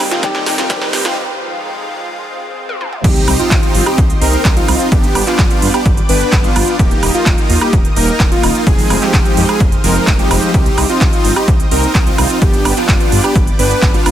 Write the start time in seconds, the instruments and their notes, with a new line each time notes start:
Already playing: analog synth pad D#2 D#3 A#3 G4, felt piano D#3 G3 C4 G4, riser
0.11 supersaw synth C4 D#4 F4, analog synth lead F4, snare, closed hi-hat
0.22 felt piano D#3 G3 C4 G4, supersaw synth C4 D#4, analog synth lead G4, kick, snare, closed hi-hat
0.35 snare
0.46 snare, open hi-hat
0.58 supersaw synth C4 D#4 F4, analog synth lead F4, snare, closed hi-hat
0.69 felt piano D#3 G3 C4 G4, supersaw synth C4 D#4, kick, snare, closed hi-hat
0.82 snare
0.93 snare, open hi-hat
1.05 supersaw synth C4 D#4 F4, analog synth lead F4, snare, closed hi-hat
1.17 analog synth pad F2 D#3 G#3 F4
2.11 swell
2.69 high tom
2.81 mid tom
2.93 mid tom
3.04 detuned saw bass C2, supersaw synth C4 D#4 G4, analog synth lead G4, analog synth pad G4 C5 D#5 C6, kick, closed hi-hat, crash, impact
3.16 closed hi-hat
3.28 detuned saw bass C2, open hi-hat, high woodblock
3.39 supersaw synth C4 D#4 F4, analog synth lead F4, closed hi-hat
3.51 detuned saw bass C2, kick, clap, closed hi-hat
3.63 closed hi-hat
3.75 detuned saw bass G1, open hi-hat
3.86 supersaw synth C4 D#4 G4, analog synth lead G4, closed hi-hat, high woodblock
3.98 detuned saw bass C2, kick, closed hi-hat
4.10 closed hi-hat
4.21 detuned saw bass C2, supersaw synth C4 D#4 A#4, analog synth lead A#4, open hi-hat
4.33 closed hi-hat
4.45 detuned saw bass C2, kick, clap, closed hi-hat
4.57 supersaw synth C4 D#4 F4, analog synth lead F4, closed hi-hat
4.68 detuned saw bass C2, open hi-hat, high woodblock
4.80 closed hi-hat
4.92 detuned saw bass G1, supersaw synth B3 D4 G4, analog synth lead G4, analog synth pad B4 D5 G5 D6, kick, closed hi-hat
5.04 closed hi-hat
5.15 detuned saw bass G1, open hi-hat, high woodblock
5.27 supersaw synth B3 D4 F4, analog synth lead F4, clap, closed hi-hat
5.39 detuned saw bass G1, kick, clap, closed hi-hat
5.50 closed hi-hat
5.62 detuned saw bass G2, open hi-hat
5.74 supersaw synth B3 D4 G4, analog synth lead G4, closed hi-hat, high woodblock
5.86 detuned saw bass G1, kick, closed hi-hat
5.97 closed hi-hat
6.09 detuned saw bass G1, supersaw synth B3 D4 B4, analog synth lead B4, open hi-hat
6.21 closed hi-hat
6.32 detuned saw bass G1, kick, clap, closed hi-hat
6.44 supersaw synth B3 D4 F4, analog synth lead F4, closed hi-hat
6.56 detuned saw bass G1, open hi-hat, high woodblock
6.68 closed hi-hat
6.79 detuned saw bass D#1, supersaw synth A#3 D#4 G4, analog synth lead G4, analog synth pad A#4 D#5 D#6, kick, closed hi-hat
6.91 closed hi-hat
7.03 detuned saw bass D#1, open hi-hat, high woodblock
7.14 supersaw synth A#3 D#4 F4, analog synth lead F4, closed hi-hat
7.26 detuned saw bass D#1, kick, clap, closed hi-hat
7.38 closed hi-hat
7.50 detuned saw bass D#2, open hi-hat
7.61 supersaw synth A#3 D#4 G4, analog synth lead G4, closed hi-hat, high woodblock
7.73 detuned saw bass D#1, kick, closed hi-hat
7.85 closed hi-hat
7.96 detuned saw bass D#1, supersaw synth A#3 D#4 A#4, analog synth lead A#4, open hi-hat
8.08 closed hi-hat
8.20 detuned saw bass D#1, kick, clap, closed hi-hat
8.32 supersaw synth A#3 D#4 F4, analog synth lead F4, closed hi-hat
8.43 detuned saw bass D#1, open hi-hat, high woodblock
8.55 closed hi-hat
8.67 detuned saw bass F1, supersaw synth F3 G#3 C4 D#4 G#4, analog synth lead G#4, analog synth pad C5 F5 D#6, kick, closed hi-hat
8.79 open hi-hat
8.90 detuned saw bass F1, open hi-hat, high woodblock
9.02 supersaw synth F3 G#3 C4 D#4 G4, analog synth lead G4, clap, closed hi-hat
9.14 detuned saw bass F1, kick, clap, closed hi-hat
9.25 closed hi-hat
9.37 detuned saw bass F2, open hi-hat
9.49 supersaw synth F3 G#3 C4 D#4 G#4, analog synth lead G#4, closed hi-hat, high woodblock
9.60 detuned saw bass F1, kick, closed hi-hat
9.72 closed hi-hat
9.84 detuned saw bass F1, supersaw synth F3 G#3 C4 D#4 A#4, analog synth lead A#4, open hi-hat
9.96 closed hi-hat
10.07 detuned saw bass F1, kick, clap, closed hi-hat
10.19 supersaw synth F3 G#3 C4 D#4 G4, analog synth lead G4, closed hi-hat
10.31 detuned saw bass F1, open hi-hat, high woodblock
10.43 closed hi-hat
10.54 detuned saw bass C2, analog synth lead G4, supersaw synth G4, analog synth pad C5 D#5 G5, kick, closed hi-hat
10.66 closed hi-hat
10.78 detuned saw bass C2, open hi-hat, high woodblock
10.89 supersaw synth C4 D#4 F4, analog synth lead F4, closed hi-hat
11.01 detuned saw bass C2, kick, clap, closed hi-hat
11.13 closed hi-hat
11.25 detuned saw bass G1, open hi-hat
11.36 supersaw synth C4 D#4 G4, analog synth lead G4, closed hi-hat, high woodblock
11.48 detuned saw bass C2, kick, closed hi-hat
11.60 closed hi-hat
11.71 detuned saw bass C2, supersaw synth C4 D#4 A#4, analog synth lead A#4, open hi-hat
11.83 closed hi-hat
11.95 detuned saw bass C2, kick, clap, closed hi-hat
12.07 supersaw synth C4 D#4 F4, analog synth lead F4, closed hi-hat
12.18 detuned saw bass C2, open hi-hat, high woodblock
12.30 closed hi-hat
12.42 detuned saw bass G1, supersaw synth D4 G4, analog synth lead G4, analog synth pad B4 D5 G5 D6, kick, closed hi-hat
12.54 closed hi-hat
12.65 detuned saw bass G1, open hi-hat, high woodblock
12.77 supersaw synth B3 D4 F4, analog synth lead F4, clap, closed hi-hat
12.89 detuned saw bass G1, kick, clap, closed hi-hat
13.00 closed hi-hat
13.12 detuned saw bass G2, open hi-hat
13.24 supersaw synth B3 D4 G4, analog synth lead G4, closed hi-hat, high woodblock
13.36 detuned saw bass G1, kick, closed hi-hat
13.47 closed hi-hat
13.59 detuned saw bass G1, supersaw synth B3 D4 B4, analog synth lead B4, open hi-hat
13.71 closed hi-hat
13.82 detuned saw bass G1, kick, clap, closed hi-hat
13.94 supersaw synth B3 D4 F4, analog synth lead F4, closed hi-hat
14.06 detuned saw bass G1, open hi-hat, high woodblock